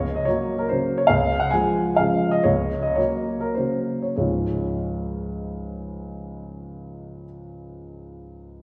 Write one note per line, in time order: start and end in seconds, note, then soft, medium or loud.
0.00 0.26 C#2 soft
0.00 0.16 C#5 medium
0.16 0.26 D#5 medium
0.25 0.65 F#3 soft
0.25 0.65 A#3 soft
0.25 0.57 C#5 medium
0.59 0.68 A#4 soft
0.69 1.05 C#3 soft
0.69 1.05 F#3 soft
0.69 1.06 A#3 soft
0.69 0.98 C5 medium
0.98 1.08 C#5 medium
1.07 1.51 C#2 soft
1.07 1.40 F5 medium
1.40 1.51 F#5 medium
1.51 1.95 F3 soft
1.51 1.95 G#3 soft
1.51 1.97 G#5 medium
1.96 2.41 C#3 soft
1.96 2.41 F3 soft
1.96 2.42 G#3 soft
1.96 2.32 F5 medium
2.31 2.44 D#5 medium
2.43 2.96 C#2 soft
2.43 2.83 C#5 medium
2.83 2.97 D#5 medium
2.95 3.53 F#3 soft
2.95 3.53 A#3 soft
2.95 3.41 C#5 medium
3.40 3.56 A#4 soft
3.55 4.16 C#3 soft
3.55 4.16 F#3 soft
3.55 4.16 A#3 soft
3.55 4.04 C5 soft
4.02 4.15 C#5 soft
4.16 7.24 C#2 soft
4.16 7.24 G#2 soft
4.16 7.24 F3 soft
4.16 7.24 G#3 soft
4.16 7.24 C#4 soft
4.16 7.25 F4 soft
4.16 7.23 C#5 soft